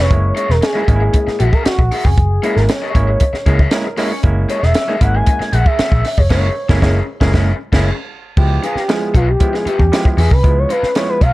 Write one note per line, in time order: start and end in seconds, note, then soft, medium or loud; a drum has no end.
0.00 0.22 B4 medium
0.00 0.35 C#5 medium
0.10 0.31 F#1 loud
0.10 0.46 G#3 medium
0.10 0.46 A#3 medium
0.10 0.47 C#4 medium
0.10 0.47 E4 medium
0.10 kick loud
0.10 closed hi-hat medium
0.35 0.50 C#4 medium
0.35 0.50 G#4 medium
0.35 0.51 A#4 medium
0.35 0.49 C#5 loud
0.35 0.51 E5 medium
0.35 closed hi-hat medium
0.50 0.60 E1 medium
0.50 0.56 A#4 medium
0.50 snare soft
0.61 0.87 G#4 medium
0.61 muted overdriven electric guitar stroke soft
0.61 snare loud
0.61 closed hi-hat medium
0.73 0.82 G#3 medium
0.73 0.82 A#3 medium
0.73 0.86 C#4 medium
0.73 0.83 C#4 medium
0.73 0.83 E4 medium
0.73 0.87 G#4 medium
0.73 0.87 A#4 medium
0.73 0.87 E5 medium
0.87 1.08 G#1 medium
0.87 1.45 G#3 medium
0.87 1.46 A#3 medium
0.87 1.46 C#4 medium
0.87 0.95 D#4 medium
0.87 1.37 G#4 loud
0.87 muted overdriven electric guitar stroke soft
0.87 kick loud
0.87 closed hi-hat medium
0.95 1.49 E4 medium
1.00 muted overdriven electric guitar stroke soft
1.13 muted overdriven electric guitar stroke soft
1.13 kick medium
1.13 closed hi-hat loud
1.27 muted overdriven electric guitar stroke soft
1.27 muted picked electric bass stroke soft
1.27 snare soft
1.39 1.50 A#1 medium
1.39 1.51 C#4 medium
1.39 1.45 F#4 loud
1.39 1.51 G#4 medium
1.39 1.51 A#4 medium
1.39 1.51 E5 medium
1.39 closed hi-hat medium
1.52 1.64 C#4 soft
1.52 1.64 G#4 medium
1.52 1.63 A#4 medium
1.52 1.64 A#4 medium
1.52 1.64 E5 medium
1.52 kick medium
1.64 2.06 F#4 medium
1.64 muted overdriven electric guitar stroke soft
1.64 muted picked electric bass stroke soft
1.64 snare loud
1.64 closed hi-hat medium
1.79 1.89 A#1 medium
1.79 muted overdriven electric guitar stroke soft
1.79 kick medium
1.92 2.06 C#4 medium
1.92 2.05 G#4 medium
1.92 2.04 A#4 medium
1.92 2.04 E5 loud
1.92 open hi-hat medium
2.04 2.15 F1 medium
2.04 2.55 G#4 medium
2.04 muted overdriven electric guitar stroke soft
2.04 kick medium
2.18 2.38 F#1 loud
2.18 kick loud
2.18 closed hi-hat medium
2.43 2.72 G#3 medium
2.43 2.72 A#3 medium
2.43 2.57 C#4 medium
2.43 2.72 C#4 medium
2.43 2.72 E4 loud
2.43 2.58 G#4 medium
2.43 2.58 A#4 loud
2.43 2.58 E5 medium
2.43 closed hi-hat medium
2.56 2.66 G#1 medium
2.56 2.61 A#4 medium
2.56 snare soft
2.69 3.69 C#5 medium
2.69 muted overdriven electric guitar stroke soft
2.69 snare loud
2.69 closed hi-hat medium
2.82 2.93 C#4 medium
2.82 2.94 G#4 medium
2.82 2.94 A#4 medium
2.82 2.95 E5 medium
2.95 3.15 G#1 medium
2.95 3.24 G#3 medium
2.95 3.24 A#3 medium
2.95 3.24 C#4 medium
2.95 3.24 E4 medium
2.95 muted overdriven electric guitar stroke soft
2.95 kick medium
2.95 closed hi-hat medium
3.08 muted overdriven electric guitar stroke soft
3.20 muted overdriven electric guitar stroke soft
3.20 kick medium
3.20 closed hi-hat medium
3.33 muted overdriven electric guitar stroke soft
3.33 muted picked electric bass stroke medium
3.33 snare soft
3.46 3.66 C#2 medium
3.46 3.61 G#3 medium
3.46 3.61 A#3 medium
3.46 3.58 C#4 medium
3.46 3.61 C#4 medium
3.46 3.61 E4 medium
3.46 3.58 G#4 medium
3.46 3.58 A#4 medium
3.46 3.57 E5 medium
3.46 kick medium
3.46 closed hi-hat medium
3.59 3.70 C#4 medium
3.59 3.70 G#4 soft
3.59 3.71 A#4 medium
3.59 3.70 E5 medium
3.59 kick medium
3.71 3.87 G#3 medium
3.71 3.87 A#3 medium
3.71 3.87 C#4 medium
3.71 3.87 E4 loud
3.71 3.97 A#4 medium
3.71 muted overdriven electric guitar stroke soft
3.71 snare loud
3.71 closed hi-hat medium
3.84 muted overdriven electric guitar stroke medium
3.97 4.12 G#3 loud
3.97 4.13 A#3 loud
3.97 4.18 C#4 medium
3.97 4.13 C#4 medium
3.97 4.13 E4 loud
3.97 4.10 G#4 medium
3.97 4.09 A#4 medium
3.97 4.22 C#5 medium
3.97 4.09 E5 medium
3.97 snare soft
3.97 open hi-hat medium
4.10 muted overdriven electric guitar stroke soft
4.23 4.44 F#1 loud
4.23 4.59 G#3 medium
4.23 4.60 A#3 medium
4.23 4.60 C#4 medium
4.23 4.60 E4 medium
4.23 kick loud
4.23 closed hi-hat medium
4.49 4.69 C#4 medium
4.49 4.70 G#4 medium
4.49 4.70 A#4 medium
4.49 4.65 C#5 medium
4.49 4.70 E5 loud
4.49 closed hi-hat medium
4.63 4.73 E1 medium
4.63 5.01 E5 loud
4.63 snare soft
4.74 muted overdriven electric guitar stroke soft
4.74 snare loud
4.74 closed hi-hat medium
4.88 4.95 G#3 medium
4.88 4.96 A#3 medium
4.88 4.96 C#4 medium
4.88 5.00 C#4 medium
4.88 4.96 D#4 loud
4.88 5.01 G#4 medium
4.88 5.01 A#4 medium
4.88 5.01 E5 medium
5.01 5.21 G#1 medium
5.01 5.59 G#3 medium
5.01 5.59 A#3 medium
5.01 5.59 C#4 medium
5.01 5.59 E4 loud
5.01 5.16 F#5 medium
5.01 muted overdriven electric guitar stroke soft
5.01 kick medium
5.01 closed hi-hat medium
5.15 5.54 G#5 loud
5.15 muted overdriven electric guitar stroke soft
5.26 muted overdriven electric guitar stroke soft
5.26 kick medium
5.26 closed hi-hat loud
5.40 muted overdriven electric guitar stroke soft
5.40 muted picked electric bass stroke soft
5.40 snare soft
5.53 5.63 A#1 medium
5.53 5.64 C#4 medium
5.53 5.64 G#4 medium
5.53 5.65 A#4 medium
5.53 5.65 E5 medium
5.53 5.68 F#5 loud
5.53 closed hi-hat medium
5.66 5.77 C#4 soft
5.66 5.78 G#4 medium
5.66 5.78 A#4 medium
5.66 5.77 E5 medium
5.66 6.19 E5 loud
5.66 kick loud
5.78 6.03 C#4 medium
5.78 6.03 G#4 medium
5.78 6.03 A#4 medium
5.78 6.04 E5 medium
5.78 muted picked electric bass stroke soft
5.78 snare loud
5.78 closed hi-hat medium
5.92 6.02 A#1 medium
5.92 kick medium
6.05 muted overdriven electric guitar stroke soft
6.05 snare soft
6.05 open hi-hat medium
6.17 6.28 F1 medium
6.17 6.29 C#5 medium
6.17 muted overdriven electric guitar stroke soft
6.17 kick medium
6.30 6.48 F#1 loud
6.30 6.48 G#3 medium
6.30 6.48 A#3 medium
6.30 6.48 C#4 loud
6.30 6.49 C#4 loud
6.30 6.49 E4 medium
6.30 6.48 G#4 loud
6.30 6.49 A#4 loud
6.30 7.04 C#5 medium
6.30 6.49 E5 loud
6.30 kick medium
6.30 snare loud
6.30 crash medium
6.69 6.80 F#1 loud
6.69 6.80 G#3 loud
6.69 6.80 A#3 loud
6.69 6.80 C#4 loud
6.69 6.81 C#4 loud
6.69 6.81 E4 loud
6.69 6.80 G#4 loud
6.69 6.81 A#4 loud
6.69 6.80 E5 medium
6.69 kick loud
6.69 snare loud
6.82 7.00 F#1 loud
6.82 7.00 G#3 loud
6.82 7.00 A#3 loud
6.82 7.00 C#4 loud
6.82 7.00 C#4 medium
6.82 7.00 E4 loud
6.82 7.00 G#4 medium
6.82 7.00 A#4 medium
6.82 6.99 E5 medium
6.82 kick loud
6.82 snare loud
7.21 7.32 F#1 loud
7.21 7.32 G#3 loud
7.21 7.32 A#3 loud
7.21 7.32 C#4 loud
7.21 7.33 E4 medium
7.21 7.32 G#4 medium
7.21 7.32 A#4 loud
7.21 7.32 E5 loud
7.21 kick loud
7.21 snare loud
7.33 7.52 F#1 loud
7.33 7.51 G#3 loud
7.33 7.52 A#3 medium
7.33 7.51 C#4 loud
7.33 7.52 C#4 loud
7.33 7.52 E4 loud
7.33 7.51 G#4 medium
7.33 7.52 A#4 loud
7.33 7.52 E5 loud
7.33 kick loud
7.33 snare loud
7.72 7.90 F#1 loud
7.72 7.90 G#3 medium
7.72 7.90 A#3 medium
7.72 7.91 C#4 medium
7.72 7.91 E4 loud
7.72 7.91 G#4 loud
7.72 7.90 A#4 medium
7.72 7.90 E5 medium
7.72 kick medium
7.72 snare loud
7.72 crash medium
8.37 8.57 C#2 medium
8.37 8.66 F3 medium
8.37 8.66 G#3 medium
8.37 8.66 B3 medium
8.37 8.66 E4 medium
8.37 8.65 G4 medium
8.37 kick loud
8.37 crash medium
8.63 8.77 C#4 loud
8.63 8.78 F4 loud
8.63 8.78 G#4 medium
8.63 8.78 B4 medium
8.63 8.78 F5 loud
8.63 closed hi-hat medium
8.75 8.90 G4 medium
8.75 muted picked electric bass stroke soft
8.75 snare soft
8.88 9.17 F3 medium
8.88 9.17 G#3 medium
8.88 9.18 B3 medium
8.88 9.18 E4 medium
8.88 9.17 G#4 medium
8.88 muted overdriven electric guitar stroke soft
8.88 snare loud
8.88 closed hi-hat medium
9.14 9.35 B1 medium
9.14 9.26 C#4 medium
9.14 9.26 F4 medium
9.14 9.28 F4 medium
9.14 9.26 B4 medium
9.14 9.26 F5 medium
9.14 kick medium
9.14 closed hi-hat medium
9.27 9.56 G4 medium
9.27 muted overdriven electric guitar stroke soft
9.40 9.69 F3 medium
9.40 9.69 G#3 medium
9.40 9.69 B3 medium
9.40 9.70 E4 medium
9.40 kick medium
9.40 closed hi-hat loud
9.53 9.68 G#4 medium
9.53 muted overdriven electric guitar stroke soft
9.53 snare soft
9.66 9.80 C#4 medium
9.66 9.79 F4 medium
9.66 10.18 G4 loud
9.66 9.79 B4 medium
9.66 9.78 E5 medium
9.66 muted picked electric bass stroke soft
9.66 closed hi-hat medium
9.79 9.89 E2 medium
9.79 muted overdriven electric guitar stroke soft
9.79 kick medium
9.92 10.21 F3 medium
9.92 10.21 G#3 medium
9.92 10.21 B3 medium
9.92 10.21 E4 medium
9.92 muted overdriven electric guitar stroke soft
9.92 snare loud
9.92 closed hi-hat medium
10.05 muted overdriven electric guitar stroke medium
10.05 kick medium
10.17 10.28 E2 medium
10.17 10.32 C#4 medium
10.17 10.31 F4 medium
10.17 10.30 G#4 medium
10.17 10.31 B4 medium
10.17 10.30 E5 medium
10.17 open hi-hat medium
10.31 10.41 C2 medium
10.31 10.60 B4 medium
10.31 muted overdriven electric guitar stroke medium
10.31 kick loud
10.43 10.64 C#2 loud
10.43 10.72 F3 medium
10.43 10.72 G#3 medium
10.43 10.73 B3 medium
10.43 10.73 E4 medium
10.43 kick loud
10.43 closed hi-hat medium
10.58 10.72 C#5 medium
10.69 10.84 C#4 loud
10.69 10.84 F4 medium
10.69 10.94 B4 medium
10.69 10.84 B4 medium
10.69 10.85 F5 loud
10.69 closed hi-hat medium
10.83 muted picked electric bass stroke soft
10.83 snare soft
10.95 11.24 F3 medium
10.95 11.24 G#3 medium
10.95 11.25 B3 medium
10.95 11.25 E4 medium
10.95 11.11 C#5 loud
10.95 muted overdriven electric guitar stroke soft
10.95 snare loud
10.95 closed hi-hat medium
11.09 11.21 B4 loud
11.21 11.33 B1 medium
11.21 11.33 C#4 medium
11.21 11.33 F4 medium
11.21 11.33 B4 medium
11.21 11.33 F5 medium
11.21 kick medium
11.21 closed hi-hat medium